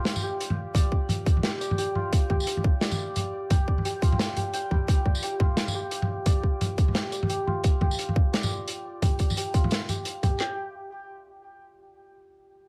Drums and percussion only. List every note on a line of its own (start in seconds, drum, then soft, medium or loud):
0.05 snare loud
0.05 closed hi-hat medium
0.16 mid tom medium
0.16 tambourine medium
0.40 closed hi-hat medium
0.50 mid tom medium
0.75 kick loud
0.75 closed hi-hat medium
0.75 mid tom medium
0.92 kick medium
1.09 closed hi-hat medium
1.09 mid tom medium
1.26 kick loud
1.26 closed hi-hat soft
1.37 mid tom medium
1.43 snare loud
1.43 closed hi-hat medium
1.61 closed hi-hat medium
1.61 tambourine soft
1.71 mid tom medium
1.78 closed hi-hat medium
1.95 mid tom medium
2.13 kick loud
2.13 closed hi-hat medium
2.30 kick medium
2.30 mid tom medium
2.40 tambourine soft
2.47 closed hi-hat medium
2.57 mid tom medium
2.64 kick loud
2.81 snare loud
2.81 closed hi-hat medium
2.91 mid tom medium
2.91 tambourine medium
3.16 closed hi-hat medium
3.16 mid tom medium
3.50 kick loud
3.50 closed hi-hat medium
3.50 mid tom medium
3.68 kick medium
3.78 mid tom medium
3.85 closed hi-hat medium
4.02 kick loud
4.02 closed hi-hat soft
4.12 mid tom medium
4.19 snare loud
4.19 closed hi-hat medium
4.36 closed hi-hat medium
4.36 mid tom soft
4.54 closed hi-hat medium
4.71 kick medium
4.71 mid tom medium
4.88 kick loud
4.88 closed hi-hat medium
5.06 kick medium
5.06 mid tom soft
5.15 tambourine soft
5.22 closed hi-hat medium
5.40 kick loud
5.40 mid tom medium
5.57 snare loud
5.57 closed hi-hat medium
5.68 mid tom medium
5.68 tambourine medium
5.91 closed hi-hat medium
6.02 mid tom medium
6.26 kick loud
6.26 closed hi-hat medium
6.26 mid tom medium
6.43 kick medium
6.61 closed hi-hat medium
6.61 mid tom medium
6.78 kick loud
6.78 closed hi-hat soft
6.88 mid tom medium
6.95 snare loud
6.95 closed hi-hat medium
7.12 closed hi-hat medium
7.12 tambourine soft
7.23 mid tom medium
7.30 closed hi-hat medium
7.48 mid tom medium
7.64 kick loud
7.64 closed hi-hat medium
7.81 kick medium
7.81 mid tom medium
7.91 tambourine soft
7.99 closed hi-hat medium
8.09 mid tom medium
8.16 kick loud
8.34 snare loud
8.34 closed hi-hat medium
8.43 mid tom medium
8.43 tambourine medium
8.68 closed hi-hat medium
9.02 kick loud
9.02 closed hi-hat medium
9.02 mid tom medium
9.19 kick medium
9.19 closed hi-hat medium
9.30 mid tom medium
9.30 tambourine soft
9.37 closed hi-hat medium
9.54 kick loud
9.54 closed hi-hat medium
9.64 mid tom medium
9.71 snare loud
9.71 closed hi-hat medium
9.89 closed hi-hat medium
9.89 mid tom medium
9.89 tambourine soft
10.05 closed hi-hat medium
10.23 kick medium
10.23 closed hi-hat soft
10.23 mid tom medium
10.40 snare loud
10.40 clap medium